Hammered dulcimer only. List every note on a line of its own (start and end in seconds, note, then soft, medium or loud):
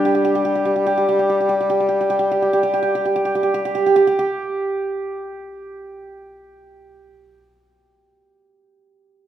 0.05 0.14 G4 soft
0.15 0.24 G4 soft
0.25 0.35 G4 soft
0.35 0.44 G4 soft
0.45 0.55 G4 medium
0.55 0.65 G4 soft
0.65 0.75 G4 soft
0.76 0.86 G4 soft
0.86 0.97 G4 medium
0.98 1.08 G4 soft
1.09 1.19 G4 soft
1.19 1.29 G4 soft
1.30 1.40 G4 soft
1.40 1.49 G4 soft
1.49 1.60 G4 soft
1.61 1.69 G4 soft
1.70 1.80 G4 soft
1.80 1.88 G4 soft
1.89 2.00 G4 soft
2.01 2.09 G4 soft
2.10 2.19 G4 medium
2.19 2.31 G4 soft
2.31 2.42 G4 medium
2.42 2.53 G4 soft
2.53 2.63 G4 soft
2.63 2.73 G4 soft
2.74 2.82 G4 soft
2.83 2.95 G4 soft
2.95 3.05 G4 soft
3.05 3.15 G4 soft
3.16 3.25 G4 soft
3.25 3.35 G4 soft
3.35 3.43 G4 soft
3.43 3.54 G4 soft
3.54 3.65 G4 medium
3.65 3.74 G4 soft
3.75 3.86 G4 soft
3.86 3.96 G4 soft
3.96 4.07 G4 medium
4.07 4.18 G4 soft
4.19 7.33 G4 medium